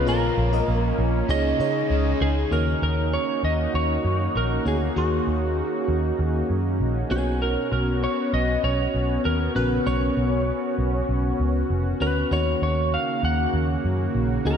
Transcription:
Already playing: analog synth pad F4
0.05 picked electric bass A#1, overdriven electric guitar A#2 F3, fm electric piano A#2 F4 A#4 C#5, analog synth pad A#3 C#4, lead electric guitar A#4
0.10 overdriven electric guitar A#3
0.37 picked electric bass A#1
0.53 fm electric piano F4 A#4 D#5
0.68 picked electric bass A#1
0.99 picked electric bass A#1
1.28 picked electric bass C#2, overdriven electric guitar C#3 G#3 C#4, analog synth pad C#3 D#4 G#4, fm electric piano C#3 D#4 G#4 C#5, lead electric guitar D#5
1.60 picked electric bass C#3, fm electric piano D#4 G#4 C#5
1.89 picked electric bass C#2, overdriven electric guitar C#3 G#3 C#4
2.21 picked electric bass C#2, lead electric guitar G#4
2.51 picked electric bass D#2, fm electric piano D#3 A#3 D#4 F#4 C#5, analog synth pad A#3 C#4 D#4 F#4, lead electric guitar A#4
2.82 picked electric bass D#2, lead electric guitar A#4
3.13 lead electric guitar C#5
3.43 picked electric bass D#2, lead electric guitar D#5
3.74 picked electric bass D#2, lead electric guitar C#5
4.05 picked electric bass F#2
4.35 picked electric bass A#1, lead electric guitar A#4
4.65 picked electric bass D2, fm electric piano A#3 D#4 F#4 C#5, lead electric guitar G#4
4.96 picked electric bass D#2, fm electric piano D#3 A#3 D#4 F#4 G#4, lead electric guitar F#4
5.27 picked electric bass D#2
5.88 picked electric bass D#2
6.19 picked electric bass D#2
6.50 picked electric bass F#2
6.80 picked electric bass A#1
7.10 picked electric bass B1, fm electric piano B2 B3 C#4 F#4 C5, analog synth pad B3 F#4, lead electric guitar G#4
7.18 fm electric piano C#5
7.42 lead electric guitar A#4
7.72 picked electric bass B1, lead electric guitar A#4
8.04 lead electric guitar C#5
8.33 picked electric bass B1, lead electric guitar D#5
8.64 picked electric bass B1, lead electric guitar C#5
8.95 picked electric bass B1
9.25 picked electric bass D#2, lead electric guitar A#4
9.55 picked electric bass A#1, fm electric piano C#3 B3 C#4 F#4 A#4, lead electric guitar B4
9.86 picked electric bass B1, fm electric piano B3 C#4 F#4 C#5, lead electric guitar C#5
10.17 picked electric bass B1
10.78 picked electric bass B1
11.09 picked electric bass B1
11.40 picked electric bass C#2
11.70 picked electric bass F1
12.00 picked electric bass D2, fm electric piano B3 C#4 F#4 C#5, lead electric guitar B4
12.31 picked electric bass D#2, analog synth pad C#3 A#3, fm electric piano D#3 A#3 D#4 F#4 C#5, lead electric guitar C#5
12.62 picked electric bass D#2, lead electric guitar C#5
12.94 lead electric guitar F5
13.23 picked electric bass D#2, lead electric guitar F#5
13.54 picked electric bass D#2
13.85 picked electric bass F#2
14.15 picked electric bass A#1
14.45 picked electric bass D2, fm electric piano A#3 D#4 F#4 D#5, lead electric guitar A#4

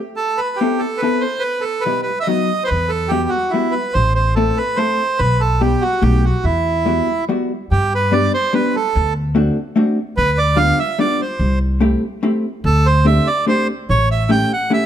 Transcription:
0.16 bandoneon A4
0.37 bandoneon B4
0.56 bandoneon G4
0.61 hollow-body jazz guitar B3 C4 E4 A4
0.78 bandoneon A4
0.97 bandoneon B4
1.02 hollow-body jazz guitar B3 C4 E4 A4
1.21 bandoneon C5
1.39 bandoneon B4
1.61 bandoneon A4
1.81 bandoneon B4
1.86 hollow-body jazz guitar B2 G3 B3 E4 G4
2.02 bandoneon B4
2.20 bandoneon D#5 E5
2.27 hollow-body jazz guitar F#3 B3 D#4 F#4
2.64 bandoneon B4 C5
2.71 upright bass E2
2.89 bandoneon A4
3.08 hollow-body jazz guitar G3 B3 E4 F#4, bandoneon G4
3.29 bandoneon F#4
3.50 hollow-body jazz guitar G3 B3 E4, bandoneon E4
3.55 hollow-body jazz guitar F#4
3.71 bandoneon B4
3.94 upright bass A1, bandoneon C5
4.15 bandoneon C5
4.35 hollow-body jazz guitar A3 C4 E4 A4, bandoneon A4
4.57 bandoneon B4
4.76 hollow-body jazz guitar A3 C4 E4 A4, bandoneon C5
5.19 upright bass B1, bandoneon B4
5.41 bandoneon A4
5.61 hollow-body jazz guitar G3 B3 E4 G4, bandoneon G4
5.81 bandoneon F#4
6.02 upright bass B1, hollow-body jazz guitar A3 B3 D#4 F#4, bandoneon G4
6.25 bandoneon F#4
6.44 upright bass E2, bandoneon E4
6.86 hollow-body jazz guitar G3 B3 E4 F#4
7.29 hollow-body jazz guitar G3 B3 E4 F#4
7.71 upright bass G2, bandoneon G4
7.95 bandoneon B4
8.12 hollow-body jazz guitar G3 B3 D4 G4, bandoneon D5
8.34 bandoneon C5
8.53 hollow-body jazz guitar G3 B3 D4 G4, bandoneon B4
8.76 bandoneon A4
8.95 upright bass D2
9.35 hollow-body jazz guitar A3 C4 D4 F#4
9.76 hollow-body jazz guitar A3 C4 D4 F#4
10.17 upright bass D2, bandoneon B4
10.38 bandoneon D5
10.56 hollow-body jazz guitar G3 B3 D4 F4, bandoneon F5
10.79 bandoneon E5
10.99 hollow-body jazz guitar G3 B3 D4 F4, bandoneon D5
11.21 bandoneon C5
11.39 upright bass C2
11.80 hollow-body jazz guitar A3 C4 E4 G4
12.23 hollow-body jazz guitar A3 C4 E4 G4
12.64 upright bass D2, bandoneon A4
12.86 bandoneon C5
13.05 hollow-body jazz guitar A3 C4 D4 G4, bandoneon E5
13.27 bandoneon D5
13.46 hollow-body jazz guitar A3 C4 D4 G4, bandoneon C5
13.89 upright bass A1, bandoneon C#5
14.11 bandoneon E5
14.29 hollow-body jazz guitar A3 C#4 E4 G4, bandoneon G5
14.53 bandoneon F#5
14.70 hollow-body jazz guitar A3 C#4 E4 G4, bandoneon E5

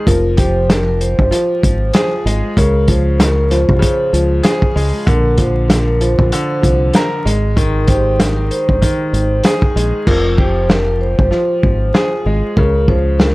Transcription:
0.07 fingered electric bass F1, grand piano F3, vibraphone A#4, kick, closed hi-hat
0.37 grand piano G4, vibraphone C5, kick, closed hi-hat
0.70 vibraphone A#4, snare, closed hi-hat
0.88 vibraphone A#4
1.01 vibraphone C5, closed hi-hat
1.19 fingered electric bass G1, kick
1.31 grand piano F3, snare, closed hi-hat
1.63 fingered electric bass G#1, kick, closed hi-hat
1.94 grand piano G#4, snare, closed hi-hat
2.25 fingered electric bass G#1, grand piano G#3, closed hi-hat
2.57 fingered electric bass C#2, grand piano C#3, vibraphone A#4, kick, closed hi-hat
2.88 grand piano F3, vibraphone C5, kick, closed hi-hat
3.20 vibraphone A#4, snare, closed hi-hat
3.39 vibraphone A#4
3.50 grand piano F3, vibraphone C5, snare, closed hi-hat
3.69 fingered electric bass C2, kick
3.79 grand piano C#3, kick, closed hi-hat
4.13 fingered electric bass C#2, grand piano F3, closed hi-hat
4.43 grand piano G#4, snare, closed hi-hat
4.62 kick
4.76 fingered electric bass C#2, grand piano G#3, open hi-hat
5.07 fingered electric bass A#1, grand piano D3, vibraphone A#4, kick, closed hi-hat
5.38 grand piano F3, vibraphone C5, kick, closed hi-hat
5.68 vibraphone A#4, snare, closed hi-hat
5.88 vibraphone A#4
6.01 grand piano F3, vibraphone C5, closed hi-hat
6.19 fingered electric bass A#1, kick
6.32 grand piano D3, closed hi-hat
6.62 fingered electric bass C2, grand piano F3, kick, closed hi-hat
6.93 grand piano A#4, snare, closed hi-hat
7.25 fingered electric bass G#1, grand piano G#3, closed hi-hat
7.56 grand piano D#3, vibraphone A#4, kick, closed hi-hat
7.87 grand piano G4, vibraphone C5, kick, closed hi-hat
8.20 snare, closed hi-hat
8.37 vibraphone A#4
8.51 vibraphone C5, closed hi-hat
8.69 fingered electric bass G1, kick
8.82 grand piano D#3, kick, closed hi-hat
9.13 fingered electric bass G#1, closed hi-hat
9.44 grand piano G#4, snare, closed hi-hat
9.62 kick
9.76 fingered electric bass A#1, grand piano G#3, closed hi-hat
10.07 fingered electric bass F1, grand piano F3, vibraphone A#4, kick, crash
10.37 grand piano G4, vibraphone C5, kick
10.70 vibraphone A#4, snare
10.88 vibraphone A#4
11.01 vibraphone C5
11.19 fingered electric bass G1, kick
11.31 grand piano F3, snare
11.63 fingered electric bass G#1, kick
11.94 grand piano G#4, snare
12.26 fingered electric bass G#1, grand piano G#3
12.57 fingered electric bass C#2, grand piano C#3, vibraphone A#4, kick
12.88 grand piano F3, vibraphone C5, kick
13.19 vibraphone A#4, snare

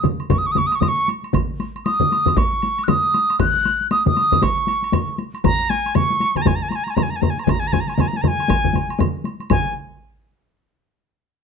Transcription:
0.04 taiko low-mid, taiko mid, taiko high, high woodblock
0.19 taiko high, high woodblock
0.30 piccolo C#6, taiko, taiko low-mid, taiko mid, taiko high, high woodblock
0.38 piccolo D#6
0.45 piccolo C#6, taiko high
0.52 piccolo D#6, taiko mid
0.56 piccolo C#6, taiko low-mid, taiko high, high woodblock
0.67 piccolo D#6
0.71 piccolo C#6, taiko high, high woodblock
0.80 piccolo D#6, taiko low-mid, taiko mid, taiko high, high woodblock
0.88 piccolo C#6
0.97 taiko high
1.08 taiko high, high woodblock
1.23 taiko high, high woodblock
1.33 taiko, taiko low-mid, taiko mid, taiko high, high woodblock
1.49 taiko high
1.60 taiko high, high woodblock
1.75 taiko high, high woodblock
1.85 piccolo D#6, taiko high, high woodblock
2.00 taiko low-mid, taiko mid, taiko high
2.12 taiko high, high woodblock
2.26 taiko low-mid, taiko mid, taiko high, high woodblock
2.37 piccolo C#6, taiko, taiko high, high woodblock
2.53 taiko high
2.62 taiko high, high woodblock
2.78 taiko high, high woodblock
2.84 piccolo F#6
2.88 piccolo D#6, taiko low-mid, taiko mid, taiko high, high woodblock
3.04 taiko high
3.14 taiko high, high woodblock
3.30 taiko high, high woodblock
3.40 piccolo F#6, taiko, taiko low-mid, taiko mid, taiko high, high woodblock
3.56 taiko high
3.65 taiko high, high woodblock
3.81 taiko high
3.91 piccolo D#6, taiko high, high woodblock
4.06 piccolo D#6, taiko low-mid, taiko mid, taiko high
4.17 taiko high, high woodblock
4.32 taiko low-mid, taiko mid, taiko high, high woodblock
4.42 piccolo C#6, taiko, taiko high, high woodblock
4.57 taiko high
4.67 taiko high, high woodblock
4.82 taiko high, high woodblock
4.92 taiko low-mid, taiko mid, taiko high, high woodblock
5.08 taiko high
5.18 taiko high, high woodblock
5.34 taiko high, high woodblock
5.44 piccolo A#5, taiko, taiko low-mid, taiko mid, taiko high, high woodblock
5.60 taiko high
5.70 piccolo G#5, taiko high, high woodblock
5.86 taiko high, high woodblock
5.95 piccolo C#6, taiko low-mid, taiko mid, taiko high, high woodblock
6.10 taiko high
6.20 taiko high, high woodblock
6.36 piccolo G#5, taiko low-mid, taiko mid, taiko high, high woodblock
6.42 piccolo A#5, taiko mid
6.46 piccolo G#5, taiko, taiko low-mid, taiko high, high woodblock
6.55 piccolo A#5
6.61 piccolo G#5, taiko high
6.69 piccolo A#5, taiko high, high woodblock
6.75 piccolo G#5
6.84 piccolo A#5, taiko high, high woodblock
6.90 piccolo G#5
6.95 piccolo A#5, taiko low-mid, taiko mid, taiko high, high woodblock
7.03 piccolo G#5
7.10 piccolo A#5, taiko high
7.16 piccolo G#5
7.21 piccolo A#5, taiko low-mid, taiko mid, taiko high, high woodblock
7.30 piccolo G#5
7.37 piccolo A#5, taiko high, high woodblock
7.44 piccolo G#5, taiko, taiko low-mid, taiko mid, taiko high
7.49 piccolo A#5, high woodblock
7.60 piccolo G#5, taiko high
7.67 piccolo A#5
7.73 piccolo G#5, taiko low-mid, taiko mid, taiko high, high woodblock
7.80 piccolo A#5
7.88 piccolo G#5, taiko high, high woodblock
7.94 piccolo A#5, taiko mid, taiko high
7.99 piccolo G#5, taiko low-mid, high woodblock
8.08 piccolo A#5
8.13 piccolo G#5, taiko high
8.22 piccolo A#5, taiko low-mid, taiko mid, taiko high, high woodblock
8.28 piccolo G#5
8.39 taiko high, high woodblock
8.48 taiko, taiko low-mid, taiko mid, taiko high, high woodblock
8.63 taiko low-mid, taiko mid, taiko high
8.73 taiko low-mid, taiko mid, taiko high, high woodblock
8.89 taiko high, high woodblock
8.99 taiko low-mid, taiko mid, taiko high, high woodblock
9.24 taiko high, high woodblock
9.40 taiko high, high woodblock
9.50 piccolo G#5, taiko, taiko low-mid, taiko mid, taiko high, high woodblock

